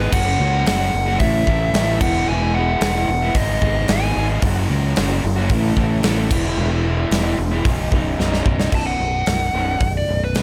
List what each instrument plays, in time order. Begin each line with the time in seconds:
Already playing: lead electric guitar B4
0.00 overdriven electric guitar G#3 B3 D#4 G#4
0.12 fingered electric bass F#1, overdriven electric guitar F#2 C#3 F#3 A#3 C#4 F#4, lead electric guitar F#5, kick, crash
0.25 overdriven electric guitar F#3 A#3 C#4 F#4
0.38 fingered electric bass C#2, overdriven electric guitar F#3 A#3 C#4 F#4
0.65 fingered electric bass F#1, overdriven electric guitar F#2 C#3 F#3 A#3 C#4 F#4, lead electric guitar F#5, snare, open hi-hat
0.79 overdriven electric guitar F#3 A#3 C#4 F#4
0.93 fingered electric bass F#1, muted overdriven electric guitar stroke
1.06 overdriven electric guitar F#3 A#3 C#4 F#4
1.19 fingered electric bass A1, overdriven electric guitar A2 E3 A3 C#4 E4, lead electric guitar E5, kick, open hi-hat
1.23 overdriven electric guitar A4
1.47 fingered electric bass A1, overdriven electric guitar A3 C#4 E4 A4, kick
1.73 fingered electric bass A1, overdriven electric guitar A2 E3 A3 C#4 E4, snare, open hi-hat
1.78 overdriven electric guitar A4
1.88 overdriven electric guitar A3 C#4 E4 A4
2.01 fingered electric bass E1, overdriven electric guitar E2 B2 E3 G#3 B3 E4, lead electric guitar F#5, kick, crash
2.14 overdriven electric guitar E3 G#3 B3 E4
2.28 fingered electric bass E1, overdriven electric guitar E2 B2 E3 G#3 B3 E4, lead electric guitar G#5
2.42 overdriven electric guitar E3 G#3 B3 E4
2.55 overdriven electric guitar E3 G#3 B3 E4, lead electric guitar F#5
2.81 fingered electric bass E1, overdriven electric guitar E2 B2 E3 G#3, snare, open hi-hat
2.85 overdriven electric guitar B3 E4
2.95 overdriven electric guitar E3 G#3 B3 E4
3.08 fingered electric bass E1, lead electric guitar F#5, muted overdriven electric guitar stroke
3.23 overdriven electric guitar E3 G#3 B3 E4
3.34 fingered electric bass G#1, overdriven electric guitar G#2 D#3 G#3 B3, lead electric guitar D#5, kick, open hi-hat
3.39 overdriven electric guitar D#4 G#4
3.62 fingered electric bass G#1, overdriven electric guitar G#3 B3 D#4 G#4, kick
3.88 fingered electric bass G#1, overdriven electric guitar G#2 D#3 G#3 B3 D#4 G#4, lead electric guitar G#5, snare, open hi-hat
4.02 overdriven electric guitar G#3 B3 D#4 G#4
4.16 fingered electric bass G#1, overdriven electric guitar G#3 B3 D#4 G#4
4.29 overdriven electric guitar G#3 B3 D#4 G#4
4.42 fingered electric bass F#1, overdriven electric guitar F#2 C#3 F#3 A#3 C#4 F#4, kick, open hi-hat
4.55 overdriven electric guitar F#3 A#3 C#4 F#4
4.69 fingered electric bass C#2, overdriven electric guitar F#3 A#3 C#4 F#4
4.95 fingered electric bass F#1, overdriven electric guitar F#2 C#3 F#3 A#3 C#4 F#4, snare, open hi-hat
5.09 overdriven electric guitar F#3 A#3 C#4 F#4
5.24 fingered electric bass F#1, muted overdriven electric guitar stroke
5.36 overdriven electric guitar F#3 A#3 C#4 F#4
5.50 fingered electric bass A1, overdriven electric guitar A2 E3 A3 C#4 E4 A4, kick, open hi-hat
5.77 fingered electric bass A1, overdriven electric guitar A3 C#4 E4 A4, kick
6.03 fingered electric bass A1, overdriven electric guitar A2 E3 A3 C#4 E4 A4, snare, open hi-hat
6.17 overdriven electric guitar A3 C#4 E4 A4
6.30 fingered electric bass E1, overdriven electric guitar E2 B2 E3 G#3 B3 E4, kick, crash
6.44 overdriven electric guitar E3 G#3 B3 E4
6.57 fingered electric bass E1, overdriven electric guitar E2 B2 E3 G#3 B3 E4
6.71 overdriven electric guitar E3 G#3 B3 E4
6.84 overdriven electric guitar E3 G#3 B3 E4
7.11 fingered electric bass E1, overdriven electric guitar E2 B2 E3 G#3 B3 E4, snare, open hi-hat
7.24 overdriven electric guitar E3 G#3 B3 E4
7.38 fingered electric bass E1, muted overdriven electric guitar stroke
7.51 overdriven electric guitar E3 G#3 B3 E4
7.65 fingered electric bass B0, overdriven electric guitar B1 F#2 B2 F#3 D#4, kick, open hi-hat
7.92 fingered electric bass B0, overdriven electric guitar F#2 B2 F#3 D#4, kick
8.18 fingered electric bass B0, overdriven electric guitar B1 F#2 B2 F#3 D#4, snare
8.32 overdriven electric guitar B2 F#3 D#4, snare
8.46 fingered electric bass B0, overdriven electric guitar F#2 B2 F#3 D#4, kick
8.59 overdriven electric guitar B2 F#3 D#4, snare
8.72 fingered electric bass B0, overdriven electric guitar B1 F#2 B2, lead electric guitar A5, kick, crash
8.87 lead electric guitar F#5
9.00 fingered electric bass B0, overdriven electric guitar B1 F#2
9.26 fingered electric bass B0, overdriven electric guitar B1 F#2, snare, open hi-hat
9.53 fingered electric bass B0, overdriven electric guitar B1 F#2 B2
9.80 fingered electric bass B0, overdriven electric guitar B1 F#2, kick, open hi-hat
9.97 lead electric guitar D5
10.08 fingered electric bass B0, overdriven electric guitar B1 F#2
10.24 lead electric guitar B4
10.34 fingered electric bass B1, overdriven electric guitar B1 F#2 B2, snare, open hi-hat